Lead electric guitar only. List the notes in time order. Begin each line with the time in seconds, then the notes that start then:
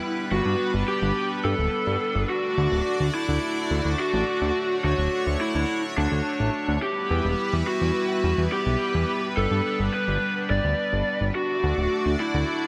Already playing: E4
0.32 F#4
0.88 G4
1.45 A4
2.30 F#4
3.15 E4
3.99 F#4
4.84 F#4
5.41 E4
5.98 D4
6.82 G4
7.67 F#4
8.52 G4
9.37 A4
9.94 B4
10.50 D5
11.35 F#4
12.20 E4